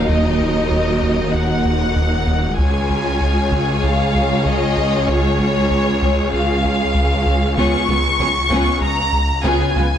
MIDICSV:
0, 0, Header, 1, 8, 480
1, 0, Start_track
1, 0, Tempo, 625000
1, 65, Time_signature, 4, 2, 24, 8
1, 7665, End_track
2, 0, Start_track
2, 0, Title_t, "Violin section"
2, 0, Program_c, 0, 48
2, 67, Note_on_c, 0, 75, 63
2, 1006, Note_off_c, 0, 75, 0
2, 1023, Note_on_c, 0, 78, 64
2, 1982, Note_on_c, 0, 80, 64
2, 1984, Note_off_c, 0, 78, 0
2, 2924, Note_off_c, 0, 80, 0
2, 2943, Note_on_c, 0, 77, 59
2, 3420, Note_on_c, 0, 75, 66
2, 3424, Note_off_c, 0, 77, 0
2, 3902, Note_off_c, 0, 75, 0
2, 3904, Note_on_c, 0, 73, 69
2, 4855, Note_on_c, 0, 77, 71
2, 4864, Note_off_c, 0, 73, 0
2, 5800, Note_off_c, 0, 77, 0
2, 5819, Note_on_c, 0, 85, 78
2, 6762, Note_off_c, 0, 85, 0
2, 6770, Note_on_c, 0, 82, 90
2, 7247, Note_off_c, 0, 82, 0
2, 7263, Note_on_c, 0, 80, 73
2, 7665, Note_off_c, 0, 80, 0
2, 7665, End_track
3, 0, Start_track
3, 0, Title_t, "Violin section"
3, 0, Program_c, 1, 48
3, 0, Note_on_c, 1, 63, 41
3, 0, Note_on_c, 1, 70, 38
3, 1954, Note_off_c, 1, 70, 0
3, 1956, Note_off_c, 1, 63, 0
3, 1972, Note_on_c, 1, 68, 46
3, 1979, Note_on_c, 1, 73, 46
3, 5787, Note_off_c, 1, 68, 0
3, 5816, Note_on_c, 1, 68, 57
3, 5821, Note_on_c, 1, 61, 59
3, 5822, Note_off_c, 1, 73, 0
3, 6043, Note_off_c, 1, 68, 0
3, 6046, Note_off_c, 1, 61, 0
3, 6064, Note_on_c, 1, 65, 40
3, 6064, Note_on_c, 1, 71, 38
3, 6125, Note_off_c, 1, 65, 0
3, 6125, Note_off_c, 1, 71, 0
3, 6294, Note_on_c, 1, 68, 45
3, 6295, Note_on_c, 1, 73, 48
3, 6355, Note_off_c, 1, 68, 0
3, 6356, Note_off_c, 1, 73, 0
3, 6536, Note_on_c, 1, 68, 53
3, 6540, Note_on_c, 1, 61, 58
3, 6763, Note_off_c, 1, 68, 0
3, 6765, Note_off_c, 1, 61, 0
3, 7255, Note_on_c, 1, 61, 57
3, 7257, Note_on_c, 1, 68, 66
3, 7483, Note_off_c, 1, 61, 0
3, 7484, Note_off_c, 1, 68, 0
3, 7496, Note_on_c, 1, 71, 47
3, 7501, Note_on_c, 1, 65, 55
3, 7558, Note_off_c, 1, 71, 0
3, 7562, Note_off_c, 1, 65, 0
3, 7665, End_track
4, 0, Start_track
4, 0, Title_t, "Viola section"
4, 0, Program_c, 2, 48
4, 0, Note_on_c, 2, 54, 42
4, 0, Note_on_c, 2, 63, 44
4, 1953, Note_off_c, 2, 54, 0
4, 1953, Note_off_c, 2, 63, 0
4, 1984, Note_on_c, 2, 65, 44
4, 1985, Note_on_c, 2, 56, 46
4, 5794, Note_off_c, 2, 56, 0
4, 5794, Note_off_c, 2, 65, 0
4, 5820, Note_on_c, 2, 59, 55
4, 5821, Note_on_c, 2, 65, 56
4, 6045, Note_off_c, 2, 59, 0
4, 6046, Note_off_c, 2, 65, 0
4, 6061, Note_on_c, 2, 59, 43
4, 6063, Note_on_c, 2, 65, 45
4, 6123, Note_off_c, 2, 59, 0
4, 6125, Note_off_c, 2, 65, 0
4, 6304, Note_on_c, 2, 59, 40
4, 6305, Note_on_c, 2, 65, 43
4, 6365, Note_off_c, 2, 59, 0
4, 6366, Note_off_c, 2, 65, 0
4, 6545, Note_on_c, 2, 65, 56
4, 6546, Note_on_c, 2, 59, 59
4, 6768, Note_off_c, 2, 59, 0
4, 6768, Note_off_c, 2, 65, 0
4, 7259, Note_on_c, 2, 59, 60
4, 7260, Note_on_c, 2, 65, 66
4, 7485, Note_off_c, 2, 59, 0
4, 7485, Note_off_c, 2, 65, 0
4, 7501, Note_on_c, 2, 65, 50
4, 7502, Note_on_c, 2, 59, 55
4, 7563, Note_off_c, 2, 59, 0
4, 7563, Note_off_c, 2, 65, 0
4, 7665, End_track
5, 0, Start_track
5, 0, Title_t, "Analog synth bass"
5, 0, Program_c, 3, 38
5, 70, Note_on_c, 3, 39, 75
5, 212, Note_off_c, 3, 39, 0
5, 310, Note_on_c, 3, 39, 52
5, 453, Note_off_c, 3, 39, 0
5, 544, Note_on_c, 3, 39, 51
5, 688, Note_off_c, 3, 39, 0
5, 785, Note_on_c, 3, 39, 66
5, 929, Note_off_c, 3, 39, 0
5, 1030, Note_on_c, 3, 39, 52
5, 1173, Note_off_c, 3, 39, 0
5, 1269, Note_on_c, 3, 39, 51
5, 1411, Note_off_c, 3, 39, 0
5, 1507, Note_on_c, 3, 39, 67
5, 1650, Note_off_c, 3, 39, 0
5, 1744, Note_on_c, 3, 39, 51
5, 1888, Note_off_c, 3, 39, 0
5, 1981, Note_on_c, 3, 37, 74
5, 2126, Note_off_c, 3, 37, 0
5, 2228, Note_on_c, 3, 37, 54
5, 2371, Note_off_c, 3, 37, 0
5, 2465, Note_on_c, 3, 37, 50
5, 2609, Note_off_c, 3, 37, 0
5, 2705, Note_on_c, 3, 37, 73
5, 2849, Note_off_c, 3, 37, 0
5, 2945, Note_on_c, 3, 37, 51
5, 3089, Note_off_c, 3, 37, 0
5, 3190, Note_on_c, 3, 37, 56
5, 3332, Note_off_c, 3, 37, 0
5, 3423, Note_on_c, 3, 37, 75
5, 3567, Note_off_c, 3, 37, 0
5, 3666, Note_on_c, 3, 37, 49
5, 3809, Note_off_c, 3, 37, 0
5, 3903, Note_on_c, 3, 37, 75
5, 4048, Note_off_c, 3, 37, 0
5, 4144, Note_on_c, 3, 37, 56
5, 4288, Note_off_c, 3, 37, 0
5, 4386, Note_on_c, 3, 37, 51
5, 4529, Note_off_c, 3, 37, 0
5, 4626, Note_on_c, 3, 37, 74
5, 4770, Note_off_c, 3, 37, 0
5, 4864, Note_on_c, 3, 37, 49
5, 5008, Note_off_c, 3, 37, 0
5, 5106, Note_on_c, 3, 37, 53
5, 5250, Note_off_c, 3, 37, 0
5, 5336, Note_on_c, 3, 37, 79
5, 5482, Note_off_c, 3, 37, 0
5, 5579, Note_on_c, 3, 37, 56
5, 5724, Note_off_c, 3, 37, 0
5, 5816, Note_on_c, 3, 37, 77
5, 5963, Note_off_c, 3, 37, 0
5, 6054, Note_on_c, 3, 37, 57
5, 6201, Note_off_c, 3, 37, 0
5, 6294, Note_on_c, 3, 37, 51
5, 6441, Note_off_c, 3, 37, 0
5, 6534, Note_on_c, 3, 37, 72
5, 6681, Note_off_c, 3, 37, 0
5, 6769, Note_on_c, 3, 37, 53
5, 6918, Note_off_c, 3, 37, 0
5, 7009, Note_on_c, 3, 37, 53
5, 7158, Note_off_c, 3, 37, 0
5, 7252, Note_on_c, 3, 37, 82
5, 7399, Note_off_c, 3, 37, 0
5, 7497, Note_on_c, 3, 37, 57
5, 7643, Note_off_c, 3, 37, 0
5, 7665, End_track
6, 0, Start_track
6, 0, Title_t, "Cello section"
6, 0, Program_c, 4, 48
6, 0, Note_on_c, 4, 39, 45
6, 1954, Note_off_c, 4, 39, 0
6, 1989, Note_on_c, 4, 37, 45
6, 5817, Note_off_c, 4, 37, 0
6, 5826, Note_on_c, 4, 37, 57
6, 5887, Note_off_c, 4, 37, 0
6, 6065, Note_on_c, 4, 37, 43
6, 6126, Note_off_c, 4, 37, 0
6, 6306, Note_on_c, 4, 37, 43
6, 6368, Note_off_c, 4, 37, 0
6, 6545, Note_on_c, 4, 37, 72
6, 6607, Note_off_c, 4, 37, 0
6, 7260, Note_on_c, 4, 37, 69
6, 7321, Note_off_c, 4, 37, 0
6, 7505, Note_on_c, 4, 37, 48
6, 7566, Note_off_c, 4, 37, 0
6, 7665, End_track
7, 0, Start_track
7, 0, Title_t, "Detuned saw bass"
7, 0, Program_c, 5, 39
7, 0, Note_on_c, 5, 27, 54
7, 1990, Note_on_c, 5, 37, 59
7, 2001, Note_off_c, 5, 27, 0
7, 5821, Note_off_c, 5, 37, 0
7, 5826, Note_on_c, 5, 37, 62
7, 7665, Note_off_c, 5, 37, 0
7, 7665, End_track
8, 0, Start_track
8, 0, Title_t, "Taiko and cinematic ensemble drums"
8, 1986, Note_on_c, 9, 41, 52
8, 2063, Note_off_c, 9, 41, 0
8, 2706, Note_on_c, 9, 41, 31
8, 2782, Note_off_c, 9, 41, 0
8, 5822, Note_on_c, 9, 41, 55
8, 5899, Note_off_c, 9, 41, 0
8, 6542, Note_on_c, 9, 41, 32
8, 6619, Note_off_c, 9, 41, 0
8, 7665, End_track
0, 0, End_of_file